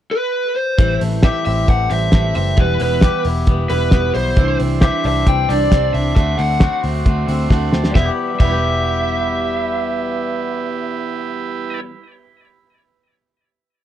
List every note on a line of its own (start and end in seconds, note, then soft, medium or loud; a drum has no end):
0.11 0.57 B4 medium
0.56 0.97 C5 loud
0.77 0.97 A1 loud
0.77 1.21 A2 medium
0.77 1.23 E3 medium
0.77 2.56 E3 medium
0.77 1.24 G3 medium
0.77 1.23 C4 medium
0.77 1.25 E4 medium
0.77 kick loud
0.77 closed hi-hat medium
1.01 1.29 A1 medium
1.01 1.67 A3 medium
1.01 open hi-hat medium
1.22 1.68 A2 medium
1.22 1.67 E3 medium
1.22 1.69 G3 medium
1.22 1.69 C4 medium
1.22 1.71 E4 medium
1.22 3.03 G4 medium
1.22 1.44 E5 medium
1.22 kick loud
1.22 snare loud
1.22 closed hi-hat medium
1.45 1.65 A1 medium
1.45 1.89 C4 medium
1.45 1.69 E5 medium
1.45 open hi-hat medium
1.68 1.87 A1 loud
1.68 1.90 E3 medium
1.68 1.91 G3 medium
1.68 2.11 A3 medium
1.68 1.89 C4 medium
1.68 1.88 E4 medium
1.68 1.92 F#5 loud
1.68 kick loud
1.68 closed hi-hat medium
1.89 2.09 A1 medium
1.89 2.12 G3 soft
1.89 2.35 C4 medium
1.89 2.13 C4 soft
1.89 2.12 E4 medium
1.89 2.35 E5 medium
1.89 open hi-hat medium
2.12 2.32 A1 loud
2.12 2.35 A2 medium
2.12 2.35 E3 medium
2.12 2.36 G3 medium
2.12 2.62 A3 medium
2.12 2.35 C4 medium
2.12 2.33 E4 medium
2.12 kick loud
2.12 snare medium
2.12 closed hi-hat medium
2.34 2.54 F#1 medium
2.34 2.57 G3 soft
2.34 2.58 C4 soft
2.34 2.63 C4 medium
2.34 2.57 E4 medium
2.34 2.59 E5 medium
2.34 open hi-hat medium
2.57 2.76 E1 loud
2.57 3.01 E2 medium
2.57 3.01 B2 medium
2.57 4.35 E3 medium
2.57 3.03 E3 medium
2.57 3.03 G3 medium
2.57 3.03 B3 medium
2.57 3.04 E4 medium
2.57 2.81 B4 medium
2.57 kick loud
2.57 closed hi-hat medium
2.80 3.08 E1 medium
2.80 3.47 B3 medium
2.80 3.23 B4 medium
2.80 open hi-hat medium
3.01 3.47 E2 medium
3.01 3.48 B2 medium
3.01 3.47 E3 medium
3.01 3.48 G3 medium
3.01 3.48 B3 medium
3.01 3.51 E4 medium
3.01 4.42 G4 medium
3.01 kick loud
3.01 snare loud
3.01 closed hi-hat medium
3.25 3.44 E1 medium
3.25 3.69 E4 medium
3.25 open hi-hat medium
3.47 3.66 E1 loud
3.47 3.70 E3 medium
3.47 3.71 G3 medium
3.47 3.91 B3 medium
3.47 3.69 B3 medium
3.47 kick loud
3.47 closed hi-hat medium
3.51 3.69 E4 medium
3.70 3.89 E1 medium
3.70 3.92 E3 soft
3.70 3.92 G3 soft
3.70 3.93 B3 soft
3.70 4.14 E4 medium
3.70 3.92 E4 medium
3.70 4.14 B4 medium
3.70 open hi-hat medium
3.91 4.11 E1 loud
3.91 4.15 E2 medium
3.91 4.15 B2 medium
3.91 4.15 E3 medium
3.91 4.15 G3 medium
3.91 4.42 B3 medium
3.91 4.15 B3 medium
3.91 4.14 E4 medium
3.91 kick loud
3.91 snare loud
3.91 closed hi-hat medium
4.14 4.33 B1 medium
4.14 4.37 E3 soft
4.14 4.37 G3 soft
4.14 4.38 B3 soft
4.14 4.42 E4 medium
4.14 4.37 E4 medium
4.14 4.56 C5 loud
4.14 open hi-hat medium
4.36 4.56 C2 loud
4.36 4.81 C3 medium
4.36 6.16 E3 medium
4.36 4.82 E3 medium
4.36 4.82 G3 medium
4.36 6.12 D4 medium
4.36 4.84 D4 medium
4.36 6.13 E4 medium
4.36 4.83 E4 medium
4.36 6.14 C5 medium
4.36 kick loud
4.36 closed hi-hat medium
4.59 4.88 C2 medium
4.59 5.27 C4 medium
4.59 open hi-hat medium
4.81 5.27 C3 medium
4.81 5.26 E3 medium
4.81 5.27 G3 medium
4.81 5.29 D4 medium
4.81 5.28 E4 medium
4.81 6.21 G4 medium
4.81 5.06 E5 medium
4.81 kick loud
4.81 snare loud
4.81 closed hi-hat medium
5.04 5.23 C2 loud
5.04 5.48 D4 medium
5.04 5.27 E5 medium
5.04 open hi-hat medium
5.27 5.45 C2 loud
5.27 5.50 E3 medium
5.27 5.50 G3 medium
5.27 5.71 C4 medium
5.27 5.50 D4 medium
5.27 5.51 G5 loud
5.27 kick loud
5.27 closed hi-hat medium
5.31 5.49 E4 medium
5.49 5.68 C2 medium
5.49 5.92 D4 medium
5.49 5.73 D4 medium
5.49 5.72 E4 medium
5.49 5.91 D5 medium
5.49 open hi-hat medium
5.53 5.73 G3 soft
5.71 5.90 C2 medium
5.71 5.95 C3 medium
5.71 5.95 E3 medium
5.71 5.95 G3 medium
5.71 6.15 C4 medium
5.71 5.95 D4 medium
5.71 5.93 E4 medium
5.71 kick loud
5.71 snare medium
5.71 closed hi-hat medium
5.92 6.13 C2 medium
5.92 6.20 D4 medium
5.92 6.18 D4 soft
5.92 6.17 E4 medium
5.92 6.15 E5 medium
5.92 open hi-hat medium
5.97 6.17 G3 soft
6.15 6.35 D2 loud
6.15 6.60 D3 medium
6.15 6.36 A3 medium
6.15 6.61 A3 medium
6.15 7.91 D4 medium
6.15 7.92 F#4 medium
6.15 7.93 C5 medium
6.15 6.39 E5 medium
6.15 kick loud
6.15 closed hi-hat medium
6.19 6.61 C4 medium
6.19 6.62 F#4 medium
6.37 6.67 D2 loud
6.37 7.04 A3 medium
6.37 6.80 F#5 medium
6.37 open hi-hat medium
6.60 7.05 D3 medium
6.60 7.06 A3 medium
6.60 7.07 C4 medium
6.60 7.99 F#4 medium
6.60 7.07 F#4 medium
6.60 kick loud
6.60 snare loud
6.60 closed hi-hat medium
6.83 7.02 D2 loud
6.83 7.26 C4 medium
6.83 open hi-hat medium
7.05 7.25 D2 loud
7.05 7.29 D3 medium
7.05 7.49 A3 medium
7.05 7.29 A3 medium
7.05 7.30 C4 medium
7.05 7.28 F#4 medium
7.05 kick loud
7.05 closed hi-hat medium
7.28 7.47 D2 loud
7.28 7.70 C4 medium
7.28 7.51 C4 medium
7.28 7.51 F#4 medium
7.28 7.49 E5 medium
7.28 open hi-hat medium
7.32 7.51 A3 medium
7.50 7.69 D2 loud
7.50 7.73 D3 medium
7.50 7.96 A3 medium
7.50 7.74 A3 medium
7.50 7.73 C4 medium
7.50 7.71 F#4 loud
7.50 7.72 F#5 medium
7.50 kick loud
7.50 snare medium
7.72 7.92 D2 medium
7.72 7.99 C4 medium
7.72 7.96 C4 medium
7.72 7.95 F#4 medium
7.72 7.94 A5 medium
7.72 snare medium
7.76 7.97 A3 soft
7.84 snare medium
7.90 8.35 E2 medium
7.90 8.34 G3 medium
7.95 8.08 E1 loud
7.95 8.40 B2 medium
7.95 8.40 B3 medium
7.95 8.08 E4 medium
7.95 8.08 G4 medium
7.95 8.08 B4 medium
7.95 8.08 E5 medium
7.95 kick loud
7.95 snare medium
7.99 8.44 E3 medium
7.99 8.47 G3 medium
7.99 8.45 E4 medium
8.05 8.51 B3 medium
8.05 8.54 E4 medium
8.05 8.49 G4 medium
8.34 11.85 E2 medium
8.34 11.84 G3 medium
8.40 11.80 E1 loud
8.40 11.90 B2 medium
8.40 11.94 E3 medium
8.40 11.90 B3 medium
8.40 11.81 E4 medium
8.40 11.80 G4 medium
8.40 11.80 B4 medium
8.40 11.80 E5 medium
8.40 kick loud
8.40 crash medium
8.45 11.98 G3 medium
8.45 11.95 E4 medium
8.50 12.01 B3 medium
8.50 12.00 G4 loud
8.54 12.04 E4 medium